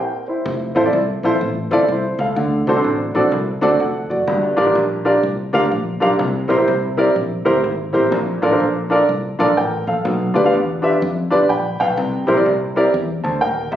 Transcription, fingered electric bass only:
0.45 0.71 F1 loud
0.76 0.90 A1 medium
0.93 1.19 C2 medium
1.23 1.38 A#1 medium
1.41 1.67 A1 medium
1.71 1.86 G1 medium
1.88 2.14 C2 medium
2.19 2.34 C#2 loud
2.36 2.62 D2 loud
2.67 2.82 C2 medium
2.84 3.10 A1 medium
3.15 3.30 A#1 medium
3.32 3.58 C2 loud
3.63 3.78 D2 loud
3.80 4.06 F1 medium
4.11 4.26 F#1 medium
4.27 4.54 G1 loud
4.58 4.73 A1 medium
4.75 5.16 A#1 loud
5.23 5.50 C2 loud
5.54 5.69 D2 medium
5.72 5.98 A#1 medium
6.02 6.17 B1 loud
6.19 6.45 C2 loud
6.50 6.65 A#1 medium
6.68 7.09 C2 loud
7.16 7.42 A#1 medium
7.46 7.61 D2 medium
7.64 7.90 G#1 medium
7.95 8.10 A1 medium
8.12 8.38 A#1 loud
8.42 8.58 A1 medium
8.60 9.01 A#1 medium
9.09 9.35 C2 medium
9.40 9.54 A#1 loud
9.57 9.83 A1 loud
9.87 10.02 A#1 medium
10.05 10.31 B1 loud
10.36 10.51 D2 loud
10.54 10.94 E2 medium
11.02 11.28 F2 loud
11.32 11.47 G1 medium
11.49 11.75 A#1 medium
11.80 11.95 B1 medium
11.97 12.23 C2 loud
12.28 12.43 A#1 medium
12.46 12.87 C2 medium
12.94 13.20 E2 loud
13.24 13.39 D2 medium
13.42 13.68 D#1 medium
13.72 13.76 E1 loud

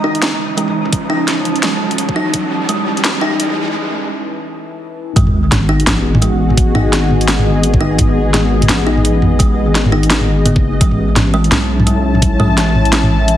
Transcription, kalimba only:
0.04 0.21 D#4 loud
0.57 0.74 G#3 medium
1.10 1.27 D#4 medium
1.63 1.80 G#3 medium
2.16 2.33 D#4 loud
2.69 2.86 G#3 medium
3.21 3.39 D#4 loud
5.16 5.33 G#3 medium
5.69 5.86 D#4 loud
6.22 6.39 G#3 medium
6.75 6.92 D#4 loud
7.28 7.45 G#3 medium
7.81 7.98 D#4 loud
8.34 8.51 G#3 medium
8.87 9.04 D#4 loud
9.39 9.56 G#3 medium
9.92 10.09 D#4 loud
10.45 10.62 B3 medium
10.81 10.98 G#3 medium
11.34 11.85 G#3 loud
11.87 12.04 G#3 medium
12.40 12.91 G#3 loud
12.93 13.09 G#3 medium

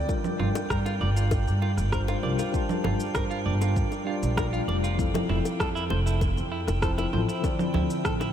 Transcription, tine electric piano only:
0.00 0.11 D3 medium
0.00 0.11 C4 medium
0.00 0.10 F4 medium
0.00 0.11 G5 medium
0.07 1.88 G3 medium
0.07 1.89 D4 medium
0.07 1.90 F4 medium
0.12 1.90 A#4 medium
1.91 2.19 G3 medium
1.91 2.20 D4 medium
1.91 2.20 F4 medium
1.91 2.20 C5 medium
2.23 2.50 G3 medium
2.23 2.50 D4 medium
2.23 2.51 F4 medium
2.23 2.51 A#4 medium
2.52 4.02 G3 medium
2.52 4.03 D4 medium
2.52 4.04 F4 medium
2.56 4.05 A5 medium
4.05 4.94 G3 medium
4.05 4.95 D4 medium
4.05 4.96 F4 medium
4.10 4.97 D5 medium
4.96 6.78 F3 medium
4.96 6.79 C4 medium
4.96 6.79 E4 medium
5.01 6.80 A4 medium
6.81 7.09 F3 medium
6.81 7.09 C4 medium
6.81 7.10 E4 medium
6.81 7.10 C5 medium
7.12 7.40 F3 medium
7.12 7.40 C4 medium
7.12 7.40 E4 medium
7.12 7.41 A4 medium
7.42 8.33 D3 medium
7.42 8.33 F3 medium
7.42 8.33 C4 medium
7.46 8.33 D5 medium

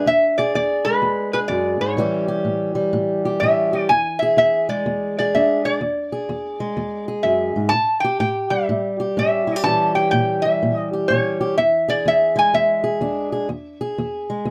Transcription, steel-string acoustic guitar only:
0.06 0.50 E2 medium
0.39 1.33 G#4 medium
0.55 0.99 E2 medium
0.86 1.96 G#3 medium
1.02 1.46 E2 medium
1.34 1.96 G#4 medium
1.49 1.80 F#2 medium
1.81 1.97 G#2 medium
1.97 2.41 A2 medium
1.97 5.38 E3 medium
1.97 2.74 G3 medium
1.97 3.42 C#4 medium
1.97 2.27 G4 medium
2.28 3.24 G4 medium
2.45 2.89 A2 medium
2.75 3.89 G3 medium
2.93 3.37 A2 medium
3.25 3.72 G4 medium
3.42 3.86 A2 medium
3.42 3.88 C#4 medium
3.73 3.87 G4 medium
3.90 4.34 E2 medium
4.22 5.17 G#4 medium
4.37 4.82 E2 medium
4.69 5.79 G#3 medium
4.86 5.30 E2 medium
5.20 5.64 G#4 medium
5.35 5.78 E2 medium
5.35 5.80 D4 medium
5.65 5.80 G#4 medium
5.81 6.25 E2 medium
6.12 7.07 G#4 medium
6.29 6.74 E2 medium
6.60 7.71 G#3 medium
6.77 7.21 E2 medium
7.08 7.71 G#4 medium
7.24 7.55 F#2 medium
7.56 7.73 G#2 medium
7.72 8.17 A2 medium
8.04 8.99 G4 medium
8.20 8.65 A2 medium
8.51 9.64 G3 medium
8.69 9.14 A2 medium
9.00 9.47 G4 medium
9.17 9.62 A2 medium
9.17 9.63 C#4 medium
9.47 9.56 E4 medium
9.56 9.65 G4 medium
9.63 10.09 A#2 medium
9.63 13.04 E3 medium
9.63 10.44 G3 medium
9.63 11.09 C#4 medium
9.63 9.94 G4 medium
9.95 10.92 G4 medium
10.13 10.57 A#2 medium
10.45 11.58 G3 medium
10.63 11.07 A#2 medium
10.93 11.39 G4 medium
11.10 11.54 A#2 medium
11.10 11.56 C#4 medium
11.41 11.55 G4 medium
11.58 12.02 E2 medium
11.88 12.82 G#4 medium
12.06 12.50 E2 medium
12.36 13.47 G#3 medium
12.54 12.98 E2 medium
12.84 13.31 G#4 medium
13.01 13.46 E2 medium
13.01 13.47 D4 medium
13.32 13.47 G#4 medium
13.49 13.94 E2 medium
13.81 14.51 G#4 medium
13.98 14.42 E2 medium
14.30 14.51 G#3 medium
14.45 14.51 E2 medium

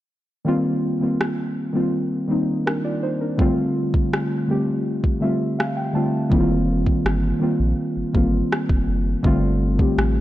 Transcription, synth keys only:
0.45 0.84 D#3 loud
0.45 0.84 G3 medium
0.45 0.85 A#3 medium
0.45 0.85 C4 medium
0.45 0.86 F4 loud
1.00 1.52 D#3 medium
1.00 1.52 G3 medium
1.00 1.53 A#3 medium
1.00 1.53 C4 medium
1.00 1.54 F4 medium
1.73 2.12 D#3 medium
1.73 2.13 G3 medium
1.73 2.13 A#3 medium
1.73 2.14 C4 medium
1.73 2.14 F4 medium
2.28 3.06 D#3 medium
2.28 3.06 G3 medium
2.28 3.07 A#3 medium
2.28 3.07 C4 medium
2.28 2.67 D#4 medium
2.66 2.84 D4 soft
2.66 2.83 A#4 medium
2.84 3.02 F4 medium
2.84 3.02 D5 medium
3.03 3.20 D#4 medium
3.03 3.20 C5 medium
3.21 3.56 D4 medium
3.21 3.56 A#4 medium
3.37 4.15 D3 loud
3.37 4.16 G3 medium
3.37 4.16 A3 medium
3.37 4.17 C4 medium
3.37 4.17 F4 loud
4.47 4.99 D3 medium
4.47 5.00 G3 medium
4.47 5.00 A3 medium
4.47 5.01 C4 medium
4.47 5.01 G4 medium
5.20 5.72 D3 medium
5.20 5.73 G3 medium
5.20 5.73 A3 medium
5.20 5.74 C4 medium
5.20 5.74 F4 medium
5.20 5.56 E5 medium
5.59 5.76 F5 medium
5.77 5.94 G5 medium
5.93 6.20 D3 medium
5.93 6.20 G3 medium
5.93 6.21 A3 medium
5.93 6.21 C4 medium
5.93 6.22 F4 medium
5.93 6.29 A5 medium
6.30 7.08 D#3 loud
6.30 7.08 G3 medium
6.30 7.09 A#3 medium
6.30 7.09 C4 medium
6.30 6.39 E4 medium
6.40 7.13 F4 loud
7.40 7.92 D#3 medium
7.40 7.92 G3 medium
7.40 7.93 A#3 medium
7.40 7.93 C4 medium
7.40 7.94 F4 medium
8.13 8.91 D#3 medium
8.13 8.91 G3 medium
8.13 8.92 A#3 medium
8.13 8.92 C4 medium
8.13 8.93 F4 medium
9.23 9.62 D3 loud
9.23 9.63 G3 medium
9.23 9.63 A3 medium
9.23 9.63 C4 medium
9.23 9.64 F4 loud
9.78 10.21 D3 medium
9.78 10.21 G3 medium
9.78 10.21 A3 medium
9.78 10.21 C4 medium
9.78 10.21 G4 medium

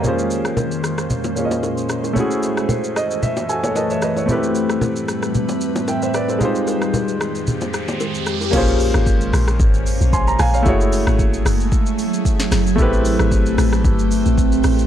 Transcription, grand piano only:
0.00 1.33 A#3 medium
0.00 1.34 C#4 medium
0.00 0.18 D5 soft
0.00 0.18 F5 medium
0.05 1.34 F4 medium
0.05 1.35 G#4 medium
0.05 1.36 C5 medium
1.35 2.16 A#3 medium
1.35 2.14 C#4 medium
1.35 2.17 F4 soft
1.35 2.17 G#4 soft
1.35 1.45 C#5 soft
1.45 2.20 D#5 medium
2.13 4.23 A3 medium
2.13 4.24 C#4 medium
2.13 4.25 E4 medium
2.18 3.47 F#4 medium
2.18 3.48 G#4 medium
2.96 3.21 D#5 medium
3.23 3.47 E5 medium
3.49 3.63 F#4 medium
3.49 3.63 A4 medium
3.49 3.74 G#5 medium
3.64 3.76 A4 medium
3.64 3.75 C#5 medium
3.76 3.90 B4 medium
3.76 3.90 D#5 medium
3.76 4.25 A5 medium
3.91 4.02 C#5 medium
3.91 4.02 E5 medium
4.03 4.17 B4 medium
4.03 4.16 D#5 medium
4.17 4.43 A4 soft
4.17 4.42 C#5 medium
4.26 6.36 A3 medium
4.26 6.37 C4 medium
4.26 6.37 E4 medium
4.31 6.38 G4 medium
4.31 5.87 B4 medium
5.88 6.01 E5 medium
5.88 6.02 G5 medium
6.03 6.14 C5 medium
6.03 6.14 E5 medium
6.15 6.29 B4 medium
6.15 6.29 D5 medium
6.30 6.55 A4 soft
6.30 6.43 C5 medium
6.38 8.48 G#3 medium
6.38 8.49 D#4 medium
6.38 8.50 F4 medium
6.43 8.51 G4 medium
6.43 8.51 C5 medium
8.51 10.34 A#3 medium
8.51 10.35 C#4 medium
8.51 10.36 F4 medium
8.56 10.37 G#4 medium
8.56 10.12 C5 medium
10.13 10.27 G#5 medium
10.13 10.27 C6 medium
10.28 10.39 A#5 medium
10.39 10.52 F5 medium
10.39 10.53 G#5 medium
10.54 10.68 C#5 medium
10.54 10.79 F5 medium
10.63 12.73 A3 medium
10.63 12.73 E4 medium
10.63 12.74 F#4 medium
10.68 12.75 G#4 medium
10.68 12.76 C#5 medium
12.76 14.85 A3 medium
12.76 12.85 B3 medium
12.76 14.87 E4 medium
12.80 14.87 C4 medium
12.80 14.87 G4 medium
12.80 14.87 B4 medium

